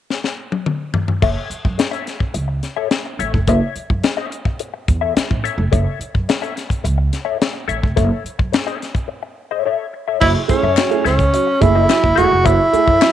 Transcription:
0.10 snare
0.24 snare
0.52 high tom
0.66 mid tom
0.94 floor tom
1.08 floor tom
1.22 upright bass F#1, clean electric guitar A4 C#5 E5, kick, crash
1.50 muted upright bass stroke, closed hi-hat
1.65 upright bass F#2, muted clean electric guitar stroke, kick
1.78 muted clean electric guitar stroke, snare, closed hi-hat
1.91 clean electric guitar A4 C#5 E5, closed hi-hat
2.06 muted clean electric guitar stroke, snare, closed hi-hat
2.19 muted clean electric guitar stroke, kick
2.34 upright bass C#2, muted clean electric guitar stroke, closed hi-hat
2.48 muted clean electric guitar stroke
2.63 snare, closed hi-hat
2.76 clean electric guitar A4 C#5 E5
2.91 muted clean electric guitar stroke, snare, closed hi-hat
3.06 muted clean electric guitar stroke
3.19 upright bass A1, clean electric guitar A4 C#5 E5, closed hi-hat
3.34 upright bass F1, muted clean electric guitar stroke, kick
3.47 upright bass F#1, clean electric guitar A4 C#5 E5, kick, closed hi-hat
3.76 muted upright bass stroke, closed hi-hat
3.90 upright bass F#2, muted clean electric guitar stroke, kick
4.03 muted clean electric guitar stroke, snare, closed hi-hat
4.17 clean electric guitar A4 C#5 E5
4.31 muted clean electric guitar stroke, closed hi-hat
4.45 muted clean electric guitar stroke, kick
4.59 muted clean electric guitar stroke, closed hi-hat
4.74 muted clean electric guitar stroke
4.88 upright bass E2, kick, closed hi-hat
5.01 clean electric guitar A4 C#5 E5
5.16 muted upright bass stroke, muted clean electric guitar stroke, snare, closed hi-hat
5.31 upright bass A1, muted clean electric guitar stroke, kick
5.44 clean electric guitar A4 C#5 E5, closed hi-hat
5.58 upright bass F1, muted clean electric guitar stroke
5.72 upright bass F#1, clean electric guitar A4 C#5 E5, kick, closed hi-hat
5.99 muted upright bass stroke, closed hi-hat
6.14 upright bass F#2, muted clean electric guitar stroke, kick
6.29 muted clean electric guitar stroke, snare, closed hi-hat
6.42 clean electric guitar A4 C#5 E5, closed hi-hat
6.56 muted clean electric guitar stroke, snare, closed hi-hat
6.69 muted clean electric guitar stroke, kick, closed hi-hat
6.84 upright bass C#2, muted clean electric guitar stroke, closed hi-hat
6.98 muted clean electric guitar stroke
7.13 snare, closed hi-hat
7.25 clean electric guitar A4 C#5 E5
7.39 muted clean electric guitar stroke, snare, closed hi-hat
7.54 muted clean electric guitar stroke
7.68 upright bass A1, clean electric guitar A4 C#5 E5, closed hi-hat
7.82 upright bass F1, muted clean electric guitar stroke, kick
7.96 upright bass F#1, clean electric guitar A4 C#5 E5, kick, closed hi-hat
8.24 muted upright bass stroke, closed hi-hat
8.39 upright bass F#2, muted clean electric guitar stroke, kick
8.52 muted clean electric guitar stroke, snare, closed hi-hat
8.67 clean electric guitar A4 C#5 E5, closed hi-hat
8.80 muted clean electric guitar stroke, snare, closed hi-hat
8.94 muted clean electric guitar stroke, kick, closed hi-hat
9.08 muted clean electric guitar stroke
9.23 muted clean electric guitar stroke
9.51 clean electric guitar A4 C#5 E5
9.65 clean electric guitar A4 C#5 E5
9.93 muted clean electric guitar stroke
10.08 clean electric guitar A4 C#5 E5
10.21 upright bass F#1, upright piano F#3, tenor saxophone E4, clean electric guitar A4 C#5 E5, kick, crash
10.35 upright piano E4 G#4
10.48 upright piano A3 E4 G#4, tenor saxophone C#4, muted clean electric guitar stroke, muted upright bass stroke, kick, closed hi-hat
10.63 upright bass F#2, clean electric guitar A4 C#5 E5
10.77 upright piano F#3, snare, clap, closed hi-hat
10.90 upright piano A3 E4 G#4, muted clean electric guitar stroke, closed hi-hat
11.04 upright bass C#2, tenor saxophone C#4, upright piano E4 G#4, clean electric guitar A4 C#5 E5, snare, closed hi-hat
11.19 muted clean electric guitar stroke, kick, closed hi-hat
11.33 upright piano F#3, muted clean electric guitar stroke, closed hi-hat
11.47 muted clean electric guitar stroke
11.61 upright bass F#1, upright piano A3 E4 G#4, tenor saxophone E4, kick, closed hi-hat
11.75 upright piano E4 G#4, clean electric guitar A4 C#5 E5
11.89 upright piano F#3, snare, clap, closed hi-hat
12.03 upright bass F#1, muted clean electric guitar stroke, kick
12.15 upright bass E1, upright piano A3 E4 G#4, tenor saxophone F#4, clean electric guitar A4 C#5 E5, closed hi-hat
12.30 upright bass F1, upright piano E4 G#4, muted clean electric guitar stroke
12.44 upright bass F#1, upright piano F#3, tenor saxophone E4, clean electric guitar A4 C#5 E5, kick, closed hi-hat
12.59 upright piano E4 G#4
12.72 upright piano A3 E4 G#4, muted clean electric guitar stroke, muted upright bass stroke, closed hi-hat
12.86 upright bass F#2, clean electric guitar A4 C#5 E5, kick
13.01 upright piano F#3, snare, clap, closed hi-hat

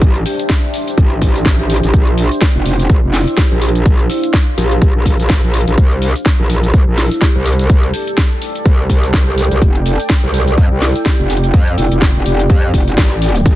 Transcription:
Already playing: analog synth pad A3 C4 E4, ambient pad D4 G4 C5 E5, downlifter
0.02 wobble bass A1, kick, closed hi-hat, shaker
0.15 closed hi-hat
0.26 vibraphone G4, open hi-hat, shaker
0.39 closed hi-hat, shaker
0.50 kick, snare, closed hi-hat, shaker
0.74 open hi-hat, shaker
0.88 closed hi-hat, shaker
0.98 wobble bass A1, kick, closed hi-hat, shaker
1.22 wobble bass A1, kick, open hi-hat, shaker
1.35 closed hi-hat, shaker
1.46 wobble bass A1, kick, snare, closed hi-hat, shaker
1.59 vibraphone G4
1.70 open hi-hat, shaker
1.76 closed hi-hat
1.83 wobble bass A1, closed hi-hat, shaker
1.94 wobble bass A#1, analog synth pad A#3 D4 F4, kick, closed hi-hat, shaker
2.07 closed hi-hat
2.18 open hi-hat, shaker
2.31 closed hi-hat, shaker
2.41 kick, snare, closed hi-hat, shaker
2.55 wobble bass F1
2.66 open hi-hat, shaker
2.79 closed hi-hat, shaker
2.90 wobble bass A#1, kick, closed hi-hat, shaker
3.03 wobble bass F1
3.13 vibraphone E4, snare, open hi-hat, shaker
3.27 vibraphone E4, closed hi-hat, shaker
3.37 vibraphone G4, kick, snare, closed hi-hat, shaker
3.51 wobble bass A#1, vibraphone G4
3.56 ambient pad F5
3.62 open hi-hat, shaker
3.68 closed hi-hat
3.75 closed hi-hat, shaker
3.86 wobble bass A#1, analog synth pad C5, kick, closed hi-hat, shaker
3.99 closed hi-hat
4.09 vibraphone E4, open hi-hat, shaker
4.23 closed hi-hat, shaker
4.34 kick, snare, closed hi-hat, shaker
4.58 wobble bass A#1, vibraphone G4, open hi-hat, shaker
4.71 closed hi-hat, shaker
4.82 kick, closed hi-hat, shaker
4.95 wobble bass A#1
5.06 kick, open hi-hat, shaker
5.19 wobble bass A#1, closed hi-hat, shaker
5.30 kick, snare, closed hi-hat, shaker
5.43 wobble bass A#1
5.54 open hi-hat, shaker
5.61 closed hi-hat
5.67 wobble bass A#1, closed hi-hat, shaker
5.78 wobble bass C2, analog synth pad G3 C4 E4, kick, closed hi-hat, shaker
5.92 closed hi-hat
6.02 ambient pad A4, open hi-hat, shaker
6.16 closed hi-hat, shaker
6.26 ambient pad D5, kick, snare, closed hi-hat, shaker
6.39 wobble bass A#1
6.50 open hi-hat, shaker
6.63 closed hi-hat, shaker
6.74 wobble bass C2, kick, closed hi-hat, shaker
6.88 wobble bass A#1
6.98 vibraphone E4, snare, open hi-hat, shaker
7.11 vibraphone E4, closed hi-hat, shaker
7.21 vibraphone G4, kick, snare, closed hi-hat, shaker
7.35 wobble bass C2, vibraphone G4
7.46 open hi-hat, shaker
7.51 ambient pad G5, closed hi-hat
7.59 closed hi-hat, shaker
7.70 wobble bass C2, kick, closed hi-hat, shaker
7.83 closed hi-hat
7.94 vibraphone G4, open hi-hat, shaker
8.07 closed hi-hat, shaker
8.18 kick, snare, closed hi-hat, shaker
8.42 open hi-hat, shaker
8.55 closed hi-hat, shaker
8.66 wobble bass C2, kick, closed hi-hat, shaker
8.90 wobble bass C2, kick, open hi-hat, shaker
9.03 closed hi-hat, shaker
9.14 wobble bass C2, kick, snare, closed hi-hat, shaker
9.27 vibraphone G4
9.38 open hi-hat, shaker
9.45 closed hi-hat
9.51 wobble bass C2, closed hi-hat, shaker
9.62 wobble bass F1, analog synth pad A3 C4 F4, kick, closed hi-hat, shaker
9.76 closed hi-hat
9.86 open hi-hat, shaker
9.99 closed hi-hat, shaker
10.10 kick, snare, closed hi-hat, shaker
10.23 wobble bass C2
10.34 open hi-hat, shaker
10.48 closed hi-hat, shaker
10.58 wobble bass F2, kick, closed hi-hat, shaker
10.71 wobble bass C2
10.82 vibraphone E4, snare, open hi-hat, shaker
10.95 vibraphone E4, closed hi-hat, shaker
11.05 vibraphone G4, kick, snare, closed hi-hat, shaker
11.19 wobble bass F1, vibraphone G4
11.30 open hi-hat, shaker
11.37 closed hi-hat
11.44 closed hi-hat, shaker
11.54 wobble bass F2, kick, closed hi-hat, shaker
11.68 closed hi-hat
11.78 wobble bass F1, vibraphone E4, open hi-hat, shaker
11.92 wobble bass F1, closed hi-hat, shaker
12.02 kick, snare, closed hi-hat, shaker
12.16 wobble bass F1
12.26 wobble bass F1, vibraphone G4, open hi-hat, shaker
12.40 closed hi-hat, shaker
12.50 wobble bass F2, kick, closed hi-hat, shaker
12.74 wobble bass F1, kick, open hi-hat, shaker
12.88 closed hi-hat, shaker
12.98 wobble bass A1, kick, snare, closed hi-hat, shaker
13.22 open hi-hat, shaker
13.29 closed hi-hat
13.36 closed hi-hat, shaker
13.46 wobble bass A1, ambient pad D4, kick, closed hi-hat, crash, shaker

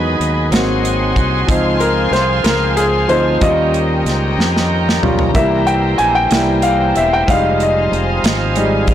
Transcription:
Already playing: fingered electric bass E2, tonewheel organ D#3 B3 D#4 G#4, grand piano F#3 G#3 D#4 G#4, string section B4 D#5 G#5 B5
0.20 fingered electric bass D#2, closed hi-hat
0.50 fingered electric bass G#1, grand piano F#3 A#3 C4, tonewheel organ F#3 A#3 D#4 G#4, string section F#5 G#5 C6, snare, closed hi-hat
0.58 tonewheel organ C4
0.85 closed hi-hat
1.16 fingered electric bass C2, kick, closed hi-hat
1.47 fingered electric bass C#2, grand piano F3 C4 D#4, tonewheel organ F3 C4 F4 G#4, string section C5 F5, kick, closed hi-hat
1.80 grand piano A#4, closed hi-hat
2.11 fingered electric bass C2, grand piano C5, snare, closed hi-hat
2.44 fingered electric bass C#2, grand piano A#4, snare, closed hi-hat
2.77 grand piano G#4, closed hi-hat
3.08 fingered electric bass D2, grand piano F3 C4 D#4 C5, closed hi-hat
3.40 fingered electric bass D#2, tonewheel organ D#3 A#3 C#4 F4, grand piano G3 C#4 F4 D#5, string section D#5 G5 A#5, kick, closed hi-hat
3.48 tonewheel organ G4
3.74 closed hi-hat
4.05 fingered electric bass C#2, snare, closed hi-hat
4.38 fingered electric bass F2, snare
4.56 snare
4.89 snare
5.02 fingered electric bass B1, grand piano G3 C#4 F4, floor tom
5.19 floor tom
5.34 fingered electric bass C2, tonewheel organ D#3 A#3 C4 G4, grand piano E3 G3 A#3 E5, string section C5 G5, kick, closed hi-hat
5.41 tonewheel organ E3
5.67 grand piano G5, closed hi-hat
5.98 fingered electric bass A#1, grand piano G#5, closed hi-hat
6.15 grand piano G5
6.31 fingered electric bass C2, grand piano G3 A#3 E4, snare, closed hi-hat
6.62 grand piano F5, closed hi-hat
6.96 fingered electric bass E1, grand piano E5, closed hi-hat
7.13 grand piano G5
7.27 fingered electric bass F1, tonewheel organ F3 C4 D#4 F4, grand piano G3 G#3 D#4 F5, string section D#5 F5 G#5, kick, closed hi-hat
7.60 grand piano D#5, closed hi-hat
7.92 fingered electric bass F1, closed hi-hat
8.24 fingered electric bass G#1, snare, closed hi-hat
8.56 grand piano G3 G#3 D#4, closed hi-hat
8.87 fingered electric bass A1, kick, closed hi-hat

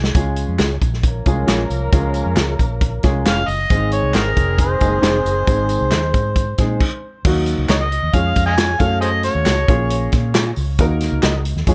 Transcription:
Already playing: fingered electric bass C2
0.04 snare
0.15 fingered electric bass C#2, upright piano G#3 C#4 F4 G#4, kick, closed hi-hat, tambourine
0.36 closed hi-hat, tambourine
0.48 fingered electric bass F2
0.59 fingered electric bass C#2, clean electric guitar F4 G#4 C#5, snare, clap, closed hi-hat, tambourine
0.81 fingered electric bass A#1, kick, closed hi-hat, tambourine
0.93 snare
1.03 horn section F3 A#3 C#4 A#4, kick, closed hi-hat
1.26 fingered electric bass C2, upright piano G#3 C#4 F4 G#4, kick, closed hi-hat, tambourine
1.47 fingered electric bass A#1, clean electric guitar F4 G#4 C#5, snare, clap, closed hi-hat, tambourine
1.70 fingered electric bass C2, closed hi-hat, tambourine
1.92 fingered electric bass C#2, upright piano G#3 C#4 F4 G#4, kick, closed hi-hat, tambourine
2.14 closed hi-hat, tambourine
2.26 fingered electric bass F2
2.36 fingered electric bass C#2, clean electric guitar F4 G#4 C#5, snare, clap, closed hi-hat, tambourine
2.59 fingered electric bass A#1, kick, closed hi-hat, tambourine
2.81 kick, closed hi-hat, tambourine
3.03 fingered electric bass C2, upright piano G#3 C#4 F4 G#4, kick, snare, closed hi-hat, tambourine
3.25 fingered electric bass F1, clean electric guitar F4 G#4 C#5, harmonica F5, snare, clap, closed hi-hat, tambourine
3.48 fingered electric bass F#1, harmonica D#5, open hi-hat, tambourine
3.70 fingered electric bass G#1, horn section D#3 G#3 C4 G#4, upright piano G#3 C4 D#4 G#4, kick, closed hi-hat, tambourine
3.92 harmonica C#5, closed hi-hat, tambourine
4.03 fingered electric bass C2
4.14 fingered electric bass G#1, clean electric guitar D#4 G#4 C5, harmonica D#4 F#4 A#4, snare, clap, closed hi-hat, tambourine
4.36 fingered electric bass F1, kick, closed hi-hat, tambourine
4.58 harmonica C5, kick, closed hi-hat, tambourine
4.80 fingered electric bass F#1, upright piano G#3 A#3 D#4 G#4, kick, closed hi-hat, tambourine
4.86 upright piano C4
5.02 fingered electric bass F1, clean electric guitar D#4 G#4 C5, snare, clap, closed hi-hat, tambourine
5.25 fingered electric bass F#1, closed hi-hat, tambourine
5.47 fingered electric bass G#1, upright piano G#3 C4 D#4 G#4, kick, closed hi-hat, tambourine
5.69 closed hi-hat, tambourine
5.81 fingered electric bass C2
5.91 fingered electric bass D#2, clean electric guitar D#4 G#4 C5, snare, clap, closed hi-hat, tambourine
6.14 fingered electric bass G#2, kick, closed hi-hat, tambourine
6.36 kick, closed hi-hat, tambourine
6.58 fingered electric bass A#2, upright piano G#3 C4 D#4 G#4, kick, snare, closed hi-hat, tambourine
6.80 kick, crash
7.25 fingered electric bass D#2, upright piano F#3 A#3 D#4 F#4, kick, crash, tambourine
7.46 closed hi-hat, tambourine
7.58 fingered electric bass C#2
7.69 fingered electric bass C#2, clean electric guitar F#4 A#4 D#5, harmonica C#5, snare, clap, closed hi-hat, tambourine
7.81 harmonica D#5
7.92 closed hi-hat
8.03 fingered electric bass D#2
8.14 fingered electric bass F2, upright piano G#3 C#4 F4 G#4, harmonica F5, kick, closed hi-hat, tambourine
8.36 fingered electric bass F2, kick, closed hi-hat, tambourine
8.46 harmonica D#5 F5 G#5
8.58 clean electric guitar F4 G#4 C#5, snare, clap, closed hi-hat, tambourine
8.80 fingered electric bass F#2, upright piano A3 C#4 F#4 A4, harmonica F5, kick, closed hi-hat, tambourine
9.01 harmonica G#4 C5 D#5, closed hi-hat, tambourine
9.23 harmonica C#5, snare, closed hi-hat, tambourine
9.35 fingered electric bass D#2
9.46 fingered electric bass C#2, clean electric guitar F#4 A4 C#5, snare, clap, closed hi-hat, tambourine
9.68 fingered electric bass A#1, upright piano A#3 C#4 F4 G#4, kick, closed hi-hat
9.90 closed hi-hat, tambourine
10.12 fingered electric bass A#2, kick, snare, closed hi-hat, tambourine
10.34 clean electric guitar F4 G#4 C#5, snare, clap, closed hi-hat, tambourine
10.56 fingered electric bass C#2, open hi-hat, tambourine
10.78 fingered electric bass D#2, upright piano A#3 D#4 F#4 A#4, kick, closed hi-hat, tambourine
11.01 snare, closed hi-hat, tambourine
11.12 fingered electric bass C#2
11.23 fingered electric bass C#2, clean electric guitar F#4 A#4 D#5, snare, clap, closed hi-hat, tambourine
11.45 closed hi-hat, tambourine
11.56 fingered electric bass D#2, snare
11.67 fingered electric bass F2, upright piano G#3 C#4 F4 G#4, kick, closed hi-hat, tambourine

